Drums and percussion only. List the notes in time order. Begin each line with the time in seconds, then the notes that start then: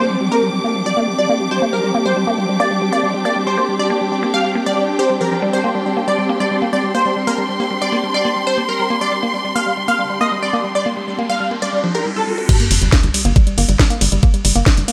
12.49 kick, closed hi-hat, crash
12.60 closed hi-hat
12.71 open hi-hat, ride
12.82 closed hi-hat
12.93 kick, snare, closed hi-hat
13.03 closed hi-hat
13.14 open hi-hat, ride
13.25 closed hi-hat
13.36 kick, closed hi-hat
13.47 closed hi-hat
13.58 open hi-hat, ride
13.69 closed hi-hat
13.79 kick, snare, closed hi-hat
13.90 closed hi-hat
14.01 open hi-hat, ride
14.12 closed hi-hat
14.23 kick, closed hi-hat
14.34 closed hi-hat
14.45 open hi-hat, ride
14.56 closed hi-hat
14.66 kick, snare, closed hi-hat
14.77 closed hi-hat
14.88 open hi-hat, ride